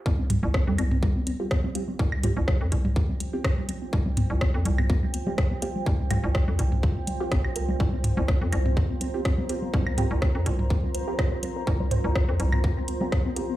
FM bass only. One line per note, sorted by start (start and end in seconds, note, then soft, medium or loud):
0.06 0.39 C2 loud
0.43 0.52 C2 loud
0.67 0.76 F2 loud
0.79 1.36 C2 medium
1.99 2.32 C2 loud
2.37 2.45 C2 loud
2.61 2.70 F2 loud
2.72 3.29 C2 loud
3.93 4.26 C2 medium
4.30 4.39 C2 loud
4.54 4.63 F2 loud
4.66 5.23 C2 loud
5.86 6.19 C2 loud
6.24 6.33 C2 loud
6.48 6.57 F2 medium
6.59 7.16 C2 loud
7.32 7.57 A#1 medium
7.56 7.75 C2 loud
7.80 8.13 C2 loud
8.17 8.26 C2 loud
8.42 8.50 F2 loud
8.53 9.10 C2 loud
9.74 10.07 C2 loud
10.11 10.20 C2 loud
10.35 10.44 F2 loud
10.46 11.03 C2 loud
11.67 12.00 C2 loud
12.04 12.13 C2 loud
12.29 12.37 F2 medium
12.40 12.97 C2 loud